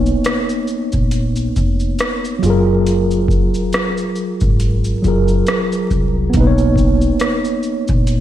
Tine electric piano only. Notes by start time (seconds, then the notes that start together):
Already playing: A#3 B3 D#4 C#5
2.39 F#3 F4
2.46 G#4 A#4
5.02 F#3 F4
5.06 G#4 A#4
6.30 A#3 B3
6.37 D#4 B4
6.47 C#5